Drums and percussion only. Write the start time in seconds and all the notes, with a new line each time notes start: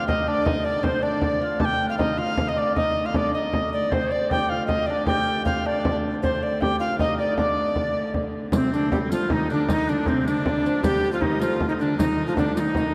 0.08 frame drum
0.46 frame drum
0.84 frame drum
1.03 frame drum
1.22 frame drum
1.60 frame drum
1.99 frame drum
2.18 frame drum
2.37 frame drum
2.76 frame drum
3.14 frame drum
3.34 frame drum
3.53 frame drum
3.92 frame drum
4.31 frame drum
4.50 frame drum
4.69 frame drum
5.07 frame drum
5.46 frame drum
5.66 frame drum
5.85 frame drum
6.24 frame drum
6.62 frame drum
6.81 frame drum
6.99 frame drum
7.38 frame drum
7.76 frame drum
7.95 frame drum
8.14 frame drum
8.33 frame drum
8.52 riq, frame drum
8.74 riq
8.92 frame drum
9.11 riq, frame drum
9.30 frame drum
9.50 riq
9.68 riq, frame drum
9.89 riq
10.06 frame drum
10.26 riq, frame drum
10.46 frame drum
10.66 riq
10.84 riq, frame drum
11.04 riq
11.22 frame drum
11.42 riq, frame drum
11.60 frame drum
11.81 riq
11.99 riq, frame drum
12.37 riq, frame drum
12.57 riq
12.75 riq, frame drum